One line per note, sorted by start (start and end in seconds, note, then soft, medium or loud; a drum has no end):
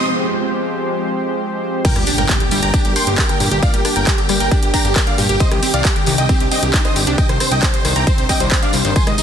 0.00 1.81 F3 medium
0.00 1.81 G#3 medium
0.00 1.81 C4 medium
0.00 1.81 G4 medium
0.00 1.81 C5 medium
1.85 1.95 A#2 medium
1.85 5.37 D3 medium
1.85 8.92 G3 medium
1.85 5.37 A#3 medium
1.85 8.92 G4 medium
1.85 1.94 A#4 medium
1.85 5.37 A#4 medium
1.85 1.94 G5 loud
1.85 kick loud
1.85 closed hi-hat medium
1.85 crash loud
1.85 tambourine soft
1.85 impact medium
1.95 2.05 G1 medium
1.95 2.03 G3 medium
1.95 2.05 G4 medium
1.95 cross-stick medium
1.95 closed hi-hat medium
1.95 tambourine soft
2.06 2.17 D4 medium
2.06 2.16 G4 medium
2.06 open hi-hat loud
2.06 tambourine medium
2.18 2.27 G1 medium
2.18 2.27 A#4 medium
2.18 2.27 G5 medium
2.18 closed hi-hat medium
2.18 tambourine soft
2.29 2.38 G4 medium
2.29 kick loud
2.29 clap loud
2.29 closed hi-hat medium
2.29 tambourine medium
2.40 2.44 D3 medium
2.40 2.49 G4 medium
2.40 closed hi-hat medium
2.40 tambourine soft
2.51 2.60 G1 loud
2.51 2.55 G3 loud
2.51 2.60 G4 medium
2.51 open hi-hat loud
2.51 tambourine medium
2.62 2.72 G1 medium
2.62 2.71 G5 medium
2.62 2.72 A#5 medium
2.62 2.72 A#5 loud
2.62 closed hi-hat medium
2.74 2.84 D4 loud
2.74 2.83 G4 medium
2.74 kick loud
2.74 closed hi-hat medium
2.74 tambourine soft
2.84 2.94 G1 medium
2.84 2.94 G4 medium
2.84 closed hi-hat medium
2.84 tambourine soft
2.96 3.06 D4 medium
2.96 3.05 G5 medium
2.96 3.05 C6 loud
2.96 open hi-hat loud
2.96 tambourine loud
3.07 3.16 G1 medium
3.07 3.16 G4 medium
3.07 closed hi-hat medium
3.07 tambourine soft
3.18 3.27 G4 medium
3.18 3.25 A#4 medium
3.18 kick loud
3.18 clap loud
3.18 closed hi-hat medium
3.18 tambourine medium
3.29 3.33 D3 medium
3.29 3.38 A#4 medium
3.29 3.38 G5 medium
3.29 3.38 G5 loud
3.29 cross-stick medium
3.29 closed hi-hat medium
3.29 tambourine soft
3.40 3.49 G2 loud
3.40 3.47 A#2 medium
3.40 3.49 G4 medium
3.40 open hi-hat loud
3.40 tambourine loud
3.51 3.61 G1 medium
3.51 3.58 G4 loud
3.51 3.60 G4 medium
3.51 closed hi-hat medium
3.51 tambourine soft
3.62 3.73 A#2 medium
3.62 3.72 D5 medium
3.62 3.71 F5 loud
3.62 3.72 F5 loud
3.62 kick loud
3.62 closed hi-hat medium
3.62 tambourine medium
3.73 3.83 G1 medium
3.73 3.80 G3 medium
3.73 3.82 G4 medium
3.73 3.83 G4 medium
3.73 closed hi-hat medium
3.73 tambourine soft
3.85 3.95 D4 medium
3.85 3.94 G4 medium
3.85 cross-stick medium
3.85 open hi-hat loud
3.85 tambourine medium
3.96 4.05 G1 medium
3.96 4.05 A#4 medium
3.96 4.05 G5 loud
3.96 closed hi-hat medium
3.96 tambourine soft
4.07 4.16 G4 medium
4.07 kick loud
4.07 clap loud
4.07 closed hi-hat medium
4.07 tambourine medium
4.18 4.22 D3 medium
4.18 4.27 G4 medium
4.18 closed hi-hat medium
4.18 tambourine soft
4.29 4.38 G1 loud
4.29 4.33 G3 loud
4.29 4.38 G4 medium
4.29 cross-stick medium
4.29 open hi-hat loud
4.29 tambourine loud
4.40 4.49 G1 medium
4.40 4.49 A#4 medium
4.40 4.49 G5 medium
4.40 closed hi-hat medium
4.40 tambourine soft
4.51 4.61 D4 loud
4.51 4.60 G4 medium
4.51 kick loud
4.51 closed hi-hat medium
4.51 tambourine medium
4.62 4.72 G1 medium
4.62 4.71 G4 medium
4.62 4.72 G4 medium
4.62 closed hi-hat medium
4.62 tambourine soft
4.74 4.84 D4 medium
4.74 4.83 G5 medium
4.74 4.83 A#5 loud
4.74 kick medium
4.74 open hi-hat loud
4.74 tambourine loud
4.85 4.94 G1 medium
4.85 4.94 G4 medium
4.85 closed hi-hat medium
4.85 tambourine soft
4.96 5.05 G4 medium
4.96 5.03 A#4 medium
4.96 kick loud
4.96 clap loud
4.96 closed hi-hat medium
4.96 tambourine medium
5.07 5.11 D3 medium
5.07 5.16 D5 medium
5.07 5.16 F5 medium
5.07 closed hi-hat medium
5.07 tambourine soft
5.18 5.27 G2 loud
5.18 5.25 A#2 medium
5.18 5.27 G4 medium
5.18 open hi-hat loud
5.18 tambourine medium
5.29 5.38 G1 medium
5.29 5.36 G4 loud
5.29 5.38 G4 medium
5.29 closed hi-hat medium
5.40 9.23 C3 medium
5.40 5.50 C3 medium
5.40 9.23 D#3 medium
5.40 8.92 D4 medium
5.40 5.49 C5 medium
5.40 5.49 D#5 loud
5.40 kick loud
5.40 closed hi-hat medium
5.40 tambourine medium
5.51 5.61 C2 medium
5.51 5.58 D#3 medium
5.51 5.60 G4 medium
5.51 cross-stick medium
5.51 closed hi-hat medium
5.51 tambourine soft
5.63 5.73 C4 medium
5.63 5.71 G4 medium
5.63 5.72 G4 medium
5.63 open hi-hat loud
5.63 tambourine medium
5.74 5.83 C2 medium
5.74 5.83 D5 medium
5.74 5.83 F5 medium
5.74 closed hi-hat medium
5.85 5.94 G4 medium
5.85 kick loud
5.85 clap loud
5.85 closed hi-hat medium
5.85 tambourine medium
5.96 6.00 D3 medium
5.96 6.05 G4 medium
5.96 closed hi-hat medium
5.96 tambourine soft
6.06 6.16 C2 loud
6.06 6.11 D#3 loud
6.06 6.16 G4 medium
6.06 open hi-hat loud
6.06 tambourine loud
6.18 6.27 C2 medium
6.18 6.27 D#5 medium
6.18 6.27 G5 loud
6.18 6.27 G5 medium
6.18 closed hi-hat medium
6.18 tambourine soft
6.29 6.39 C4 loud
6.29 6.38 G4 medium
6.29 kick loud
6.29 closed hi-hat medium
6.29 tambourine soft
6.40 6.49 C2 medium
6.40 6.49 G4 medium
6.40 closed hi-hat medium
6.40 tambourine soft
6.51 6.62 C4 medium
6.51 6.60 D#5 medium
6.51 6.60 G5 loud
6.51 open hi-hat loud
6.51 tambourine medium
6.62 6.72 C2 medium
6.62 6.71 G4 medium
6.62 6.72 G4 medium
6.62 closed hi-hat medium
6.62 tambourine soft
6.74 6.80 D#4 medium
6.74 6.83 G4 medium
6.74 kick loud
6.74 clap loud
6.74 closed hi-hat medium
6.74 tambourine medium
6.85 6.89 D3 medium
6.85 6.94 C5 medium
6.85 6.94 D#5 loud
6.85 cross-stick medium
6.85 closed hi-hat medium
6.85 tambourine soft
6.96 7.05 G1 medium
6.96 7.03 C3 medium
6.96 7.05 G4 medium
6.96 open hi-hat loud
6.96 tambourine medium
7.07 7.16 C2 medium
7.07 7.14 D4 loud
7.07 7.16 G4 medium
7.07 closed hi-hat medium
7.18 7.28 C3 medium
7.18 7.27 D#5 medium
7.18 7.27 G5 loud
7.18 kick loud
7.18 closed hi-hat medium
7.18 tambourine medium
7.29 7.38 C2 medium
7.29 7.36 D#3 medium
7.29 7.38 C5 medium
7.29 cross-stick medium
7.29 closed hi-hat medium
7.29 tambourine soft
7.40 7.50 C4 medium
7.40 7.49 C5 medium
7.40 cross-stick medium
7.40 open hi-hat loud
7.40 tambourine medium
7.51 7.61 C2 medium
7.51 7.60 D#5 medium
7.51 7.60 G5 medium
7.51 closed hi-hat medium
7.51 tambourine soft
7.63 7.71 C5 medium
7.63 kick loud
7.63 clap loud
7.63 closed hi-hat medium
7.63 tambourine medium
7.73 7.78 D3 medium
7.73 7.83 C5 medium
7.73 closed hi-hat medium
7.73 tambourine soft
7.85 7.94 C2 loud
7.85 7.89 D#3 loud
7.85 7.94 C5 medium
7.85 cross-stick medium
7.85 open hi-hat loud
7.85 tambourine loud
7.96 8.05 C2 medium
7.96 8.05 G5 medium
7.96 8.05 A#5 loud
7.96 8.05 A#5 medium
7.96 closed hi-hat medium
7.96 tambourine soft
8.07 8.17 C4 loud
8.07 8.16 C5 medium
8.07 kick loud
8.07 closed hi-hat medium
8.07 tambourine medium
8.18 8.27 C2 medium
8.18 8.27 C5 medium
8.18 closed hi-hat medium
8.18 tambourine soft
8.29 8.33 G3 medium
8.29 8.38 D#5 medium
8.29 8.38 G5 loud
8.29 8.38 G5 medium
8.29 kick medium
8.29 open hi-hat loud
8.29 tambourine medium
8.40 8.49 C2 medium
8.40 8.49 C5 medium
8.40 closed hi-hat medium
8.40 tambourine soft
8.51 8.55 G3 medium
8.51 8.60 C5 medium
8.51 kick loud
8.51 clap loud
8.51 closed hi-hat medium
8.51 tambourine soft
8.62 8.67 D4 loud
8.62 8.71 D5 medium
8.62 8.71 F5 loud
8.62 8.72 F5 medium
8.62 closed hi-hat medium
8.62 tambourine soft
8.73 8.83 C2 loud
8.73 8.80 G3 medium
8.73 8.83 C5 medium
8.73 open hi-hat loud
8.73 tambourine loud
8.85 8.94 G1 medium
8.85 8.95 D#3 loud
8.85 8.94 C5 medium
8.85 closed hi-hat medium
8.85 tambourine soft
8.96 9.06 C3 medium
8.96 9.23 G#3 medium
8.96 9.23 D#4 medium
8.96 9.23 G#4 medium
8.96 9.05 G#5 medium
8.96 9.05 C6 loud
8.96 kick loud
8.96 closed hi-hat medium
8.96 tambourine medium
9.07 9.16 G#1 medium
9.07 9.14 G#3 medium
9.07 9.16 D#5 medium
9.07 cross-stick medium
9.07 closed hi-hat medium
9.07 tambourine soft
9.18 9.23 D#4 medium
9.18 9.23 D#5 medium
9.18 open hi-hat loud
9.18 tambourine loud